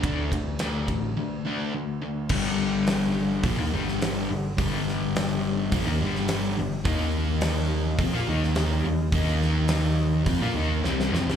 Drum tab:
CC |----------------|x---------------|----------------|----------------|
RD |x-x-x-x---------|----------------|----------------|----------------|
HH |----------------|----o---o---o---|o---o---o---o---|o---o---o---o---|
SD |----o-----------|----o------oo---|--o-o------oo---|----o------oo---|
BD |o-o---o---------|o-------o-------|o-------o-------|o-------o-------|

CC |----------------|
RD |----------------|
HH |o---o---o-------|
SD |--o-o-------oooo|
BD |o-------o-------|